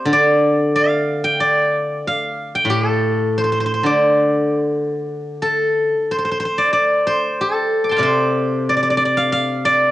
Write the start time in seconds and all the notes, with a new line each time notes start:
Already playing: C5 D5 F5
0.05 D3
0.13 D5
0.76 F5
1.24 G5
1.40 D5
2.07 F5
2.55 G5
2.65 A2
2.70 G4
2.89 A4
3.38 C5
3.44 C5
3.52 C5
3.60 C5
3.66 C5
3.74 C5
3.83 D3 D5
5.42 A4
6.11 C5
6.18 C5
6.25 C5
6.31 C5
6.40 C5
6.45 C5
6.58 D5
6.73 D5
7.07 C5
7.41 A4
7.84 D6
7.89 G5 A5 C6
7.97 C3 D5 F5
8.03 C5
8.69 D5
8.77 D5
8.83 D5
8.90 D5
8.97 D5
9.05 D5
9.17 F5
9.32 F5
9.65 D5